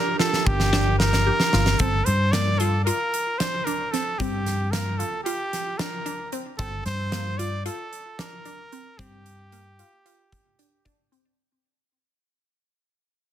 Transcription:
Already playing: tine electric piano D4 G4 A#4, trumpet A#4
0.19 synth arpeggio sound F4, trumpet A4, snare
0.33 snare
0.46 fingered electric bass G1, trumpet G4, kick
0.60 snare
0.73 synth arpeggio sound D4, snare
0.99 trumpet A#4, snare
1.13 snare
1.27 synth arpeggio sound G4
1.40 snare
1.53 fingered electric bass G1, synth arpeggio sound F4, snare
1.66 snare
1.79 fingered electric bass G1, synth arpeggio sound C4, trumpet A4, kick, closed hi-hat
2.05 fingered electric bass G2, trumpet C5, closed hi-hat
2.32 synth arpeggio sound A#3, trumpet D5, snare, closed hi-hat
2.59 synth arpeggio sound F4, trumpet A4, closed hi-hat
2.85 synth arpeggio sound F4, trumpet A#4, closed hi-hat
3.14 closed hi-hat
3.38 synth arpeggio sound D4, trumpet C5, snare, closed hi-hat
3.65 synth arpeggio sound D4, trumpet A#4, closed hi-hat
3.92 synth arpeggio sound C4, trumpet A4, snare, closed hi-hat
4.18 fingered electric bass G2, synth arpeggio sound C4, trumpet G4, kick, closed hi-hat
4.46 snare, closed hi-hat
4.71 synth arpeggio sound A#3, trumpet A#4, snare, closed hi-hat
4.97 synth arpeggio sound F4, trumpet A4, closed hi-hat
5.24 synth arpeggio sound F4, trumpet G4, closed hi-hat
5.53 snare, closed hi-hat
5.78 synth arpeggio sound D4, trumpet A#4, snare, closed hi-hat
6.06 synth arpeggio sound D4, closed hi-hat
6.32 synth arpeggio sound C4, closed hi-hat
6.58 fingered electric bass G1, synth arpeggio sound C4, trumpet A4, kick, closed hi-hat
6.86 fingered electric bass G2, trumpet C5, snare, closed hi-hat
7.12 synth arpeggio sound A#3, snare, closed hi-hat
7.38 synth arpeggio sound F4, trumpet D5, closed hi-hat
7.66 synth arpeggio sound F4, trumpet A4, closed hi-hat
7.93 closed hi-hat
8.19 synth arpeggio sound D4, trumpet A#4, snare, closed hi-hat
8.45 synth arpeggio sound D4, closed hi-hat
8.72 synth arpeggio sound C4, closed hi-hat
8.99 fingered electric bass G2, synth arpeggio sound C4, trumpet G4, kick, closed hi-hat
9.26 closed hi-hat
9.52 synth arpeggio sound A#3, closed hi-hat
9.79 synth arpeggio sound F4, closed hi-hat
10.06 synth arpeggio sound F4, closed hi-hat
10.32 kick, closed hi-hat
10.59 synth arpeggio sound D4, closed hi-hat
10.85 synth arpeggio sound D4, kick, closed hi-hat
11.12 synth arpeggio sound C4, closed hi-hat

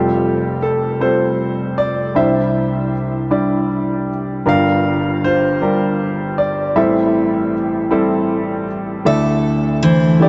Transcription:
Already playing: grand piano F1 F2 G3 C4 F4 G4 A4
0.62 grand piano A4
1.00 grand piano G3 C4 F4 A4 C5
1.78 grand piano D5
2.15 grand piano C2 C3 G3 D4 E4 C5 E5
3.31 grand piano G3 D4 E4 D5
4.46 grand piano G1 G2 G3 D4 F4 A#4 F5
4.50 grand piano A#4
5.24 grand piano F4 C5
5.62 grand piano G3 D4 F4 A#4
6.38 grand piano D5
6.76 grand piano A1 A2 G3 C4 E4 A4 C5 E5
7.91 grand piano G3 C4 E4 A4
9.05 grand piano D2 D3 A3 D4 E4 A4 D5 E5, steel-string acoustic guitar A4
9.83 steel-string acoustic guitar E3, grand piano C5
10.20 grand piano A3 D4 E4 G4 D5

